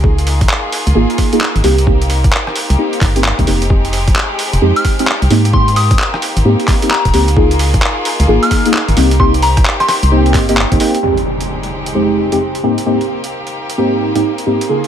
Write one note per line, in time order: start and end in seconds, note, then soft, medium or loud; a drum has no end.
0.00 0.46 C#2 medium
0.00 3.66 A#3 medium
0.00 0.16 A#3 medium
0.00 5.26 D#4 medium
0.00 0.16 D#4 medium
0.00 1.62 F4 medium
0.00 0.16 F4 medium
0.00 1.62 G#4 medium
0.00 0.16 G#4 medium
0.00 kick loud
0.18 closed hi-hat medium
0.27 open hi-hat loud
0.41 kick loud
0.41 closed hi-hat medium
0.49 clap loud
0.72 open hi-hat loud
0.87 0.93 C#2 loud
0.87 closed hi-hat medium
0.95 1.06 G#1 medium
0.95 1.29 A#3 medium
0.95 1.29 D#4 medium
0.95 1.29 F4 medium
0.95 1.29 G#4 loud
1.10 closed hi-hat soft
1.18 kick medium
1.18 open hi-hat loud
1.33 1.40 A#3 medium
1.33 1.40 D#4 medium
1.33 1.40 F4 medium
1.33 1.40 G#4 loud
1.33 closed hi-hat medium
1.41 clap loud
1.56 1.62 G#1 loud
1.56 closed hi-hat medium
1.64 2.29 C2 medium
1.64 1.76 A#3 medium
1.64 7.32 C4 medium
1.64 1.76 C4 medium
1.64 1.76 D#4 medium
1.64 7.33 G4 medium
1.64 1.76 G4 loud
1.64 open hi-hat loud
1.78 closed hi-hat medium
1.87 1.99 A#3 medium
1.87 1.99 C4 medium
1.87 1.99 D#4 medium
1.87 1.99 G4 medium
1.87 kick loud
2.02 closed hi-hat medium
2.10 open hi-hat loud
2.24 kick loud
2.24 closed hi-hat medium
2.33 clap loud
2.47 cross-stick medium
2.56 open hi-hat loud
2.70 2.76 C2 loud
2.70 closed hi-hat medium
2.78 3.12 A#3 medium
2.78 3.12 C4 medium
2.78 3.12 D#4 medium
2.78 3.12 G4 medium
2.93 closed hi-hat soft
3.01 3.33 G1 loud
3.01 kick loud
3.01 clap medium
3.01 open hi-hat loud
3.16 3.23 A#3 loud
3.16 3.23 C4 medium
3.16 3.23 D#4 medium
3.16 3.23 G4 loud
3.16 closed hi-hat medium
3.24 clap loud
3.39 3.45 C2 loud
3.39 3.45 A#3 medium
3.39 3.45 C4 medium
3.39 3.45 D#4 medium
3.39 3.45 G4 loud
3.39 kick medium
3.39 closed hi-hat soft
3.47 4.12 F1 medium
3.47 3.65 A#3 loud
3.47 3.65 C4 medium
3.47 3.65 D#4 medium
3.47 3.65 G4 loud
3.47 open hi-hat loud
3.62 closed hi-hat medium
3.70 3.82 G#3 medium
3.70 5.29 G#3 medium
3.70 3.82 C4 medium
3.70 3.82 D#4 medium
3.70 3.82 G4 medium
3.70 kick loud
3.85 closed hi-hat medium
3.93 open hi-hat loud
4.08 kick loud
4.08 closed hi-hat medium
4.16 clap loud
4.39 open hi-hat loud
4.53 4.60 F1 loud
4.53 closed hi-hat medium
4.62 4.73 F2 medium
4.62 4.96 G#3 medium
4.62 4.96 C4 medium
4.62 4.96 D#4 medium
4.62 4.96 G4 loud
4.76 4.95 F6 medium
4.76 closed hi-hat soft
4.85 kick medium
4.85 open hi-hat loud
4.99 5.06 G#3 medium
4.99 5.06 C4 medium
4.99 5.06 D#4 medium
4.99 5.06 G4 medium
4.99 closed hi-hat medium
5.08 clap loud
5.22 5.28 C2 medium
5.22 closed hi-hat medium
5.30 5.96 G#2 medium
5.30 10.99 A#3 medium
5.30 5.43 A#3 medium
5.30 5.43 C4 medium
5.30 5.43 D#4 medium
5.30 10.99 D#4 medium
5.30 5.43 G4 loud
5.30 open hi-hat loud
5.45 closed hi-hat medium
5.53 5.66 A#3 medium
5.53 5.66 C4 medium
5.53 5.66 D#4 medium
5.53 5.66 G4 medium
5.53 5.74 C6 medium
5.53 kick loud
5.68 closed hi-hat medium
5.76 5.97 D#6 medium
5.76 open hi-hat loud
5.91 kick loud
5.91 closed hi-hat medium
5.99 clap loud
6.14 cross-stick medium
6.22 open hi-hat loud
6.37 6.43 G#1 medium
6.37 closed hi-hat medium
6.45 6.56 G#2 medium
6.45 6.79 A#3 medium
6.45 6.79 C4 medium
6.45 6.79 D#4 medium
6.45 6.79 G4 loud
6.60 closed hi-hat soft
6.68 kick loud
6.68 clap medium
6.68 open hi-hat loud
6.82 6.89 A#3 medium
6.82 6.89 C4 medium
6.82 6.89 D#4 medium
6.82 6.89 G4 loud
6.82 closed hi-hat medium
6.91 7.28 A#5 medium
6.91 clap loud
7.05 7.11 D#1 loud
7.05 kick medium
7.05 closed hi-hat medium
7.14 7.79 C#2 loud
7.14 7.26 A#3 medium
7.14 7.26 C4 medium
7.14 7.26 D#4 medium
7.14 7.26 G4 loud
7.14 open hi-hat loud
7.28 closed hi-hat medium
7.37 7.49 A#3 medium
7.37 7.49 D#4 medium
7.37 7.49 F4 medium
7.37 8.95 F4 medium
7.37 7.49 G#4 medium
7.37 8.95 G#4 medium
7.37 kick loud
7.51 closed hi-hat medium
7.59 open hi-hat loud
7.74 kick loud
7.74 closed hi-hat medium
7.82 clap loud
8.05 open hi-hat loud
8.20 8.26 C#2 medium
8.20 closed hi-hat medium
8.28 8.39 G#1 medium
8.28 8.62 A#3 medium
8.28 8.62 D#4 medium
8.28 8.62 F4 medium
8.28 8.62 G#4 loud
8.43 8.61 F6 medium
8.43 closed hi-hat soft
8.51 kick medium
8.51 open hi-hat loud
8.66 8.73 A#3 medium
8.66 8.73 D#4 medium
8.66 8.73 F4 medium
8.66 8.73 G#4 medium
8.66 closed hi-hat medium
8.74 clap loud
8.88 8.95 G#1 loud
8.88 closed hi-hat medium
8.97 9.62 C2 medium
8.97 9.09 A#3 medium
8.97 9.09 C4 medium
8.97 11.01 C4 medium
8.97 9.09 D#4 medium
8.97 11.01 G4 medium
8.97 9.09 G4 loud
8.97 open hi-hat loud
9.11 closed hi-hat medium
9.20 9.32 A#3 medium
9.20 9.32 C4 medium
9.20 9.32 D#4 medium
9.20 9.32 G4 medium
9.20 9.40 C6 medium
9.20 kick loud
9.34 closed hi-hat medium
9.42 9.63 A#5 medium
9.42 open hi-hat loud
9.57 kick loud
9.57 cross-stick soft
9.57 closed hi-hat medium
9.66 clap loud
9.80 9.86 C6 medium
9.80 cross-stick medium
9.80 closed hi-hat soft
9.88 9.98 C6 medium
9.88 cross-stick medium
9.88 open hi-hat loud
10.03 10.36 C2 medium
10.03 closed hi-hat medium
10.11 10.45 A#3 medium
10.11 10.45 C4 medium
10.11 10.45 D#4 medium
10.11 10.45 G4 loud
10.26 closed hi-hat soft
10.34 10.66 G1 medium
10.34 kick loud
10.34 clap medium
10.34 open hi-hat loud
10.49 10.56 A#3 medium
10.49 10.56 C4 medium
10.49 10.56 D#4 medium
10.49 10.56 G4 loud
10.49 closed hi-hat medium
10.57 clap loud
10.72 10.78 G1 medium
10.72 10.78 A#3 medium
10.72 10.78 C4 medium
10.72 10.78 D#4 medium
10.72 10.78 G4 medium
10.72 kick medium
10.72 closed hi-hat medium
10.80 10.97 A#3 loud
10.80 10.97 C4 medium
10.80 10.97 D#4 medium
10.80 10.97 G4 loud
10.80 open hi-hat loud
10.95 closed hi-hat medium
11.03 11.15 F2 medium
11.03 11.15 G#3 medium
11.03 12.62 G#3 medium
11.03 11.15 C4 medium
11.03 14.66 C4 medium
11.03 11.15 D#4 medium
11.03 12.62 D#4 medium
11.03 11.15 G4 medium
11.03 12.62 G4 medium
11.03 impact medium
11.17 closed hi-hat soft
11.40 closed hi-hat medium
11.63 closed hi-hat soft
11.86 closed hi-hat medium
11.95 12.29 F2 medium
11.95 12.29 G#3 medium
11.95 12.29 C4 medium
11.95 12.29 D#4 medium
11.95 12.29 G4 loud
12.32 12.39 F2 medium
12.32 12.39 G#3 medium
12.32 12.39 C4 medium
12.32 12.39 D#4 medium
12.32 12.39 G4 loud
12.32 closed hi-hat medium
12.55 closed hi-hat soft
12.63 12.75 G#2 medium
12.63 12.75 A#3 medium
12.63 14.87 A#3 medium
12.63 12.76 C4 medium
12.63 12.76 D#4 medium
12.63 14.87 D#4 medium
12.63 12.76 G4 medium
12.63 14.67 G4 medium
12.78 closed hi-hat medium
12.86 12.98 G#2 medium
12.86 12.98 A#3 medium
12.86 12.98 C4 medium
12.86 12.98 D#4 medium
12.86 12.98 G4 medium
13.01 closed hi-hat soft
13.24 closed hi-hat medium
13.47 closed hi-hat soft
13.70 closed hi-hat medium
13.78 14.12 G#2 medium
13.78 14.12 A#3 medium
13.78 14.12 C4 medium
13.78 14.12 D#4 medium
13.78 14.12 G4 loud
14.15 14.22 G#2 medium
14.15 14.22 A#3 medium
14.15 14.22 C4 medium
14.15 14.22 D#4 medium
14.15 14.22 G4 loud
14.15 closed hi-hat medium
14.38 closed hi-hat soft
14.46 14.59 G#2 medium
14.46 14.59 A#3 medium
14.46 14.59 C4 medium
14.46 14.59 D#4 medium
14.46 14.59 G4 medium
14.61 closed hi-hat medium
14.69 14.82 C#3 medium
14.69 14.81 A#3 medium
14.69 14.82 D#4 medium
14.69 14.81 F4 medium
14.69 14.87 F4 medium
14.69 14.82 G#4 medium
14.69 14.87 G#4 medium
14.84 closed hi-hat soft